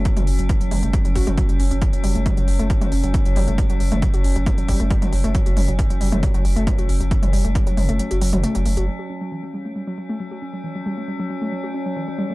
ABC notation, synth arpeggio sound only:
X:1
M:4/4
L:1/16
Q:1/4=136
K:F#phr
V:1 name="Synth arpeggio sound" clef=bass
z F C F, E, F, G, A, G, F, F F F, G, C C | E, F, G, A, G, F, F, A, F, F C F, E, F, G, A, | G, F, F, A, F, F C F, E, F, G, A, G, F, F, A, | F, F C F, E, F, G, A, G, F, F, A, F, F C F, |
E, F, G, A, G, F, F, A, F, F F, F, A, F, A, F | F, F C F, E, F, G, A, G, F, F, A, F, F C F, | E, F, G, A, G, F, F, A, F, F C F, E, F, G, A, |]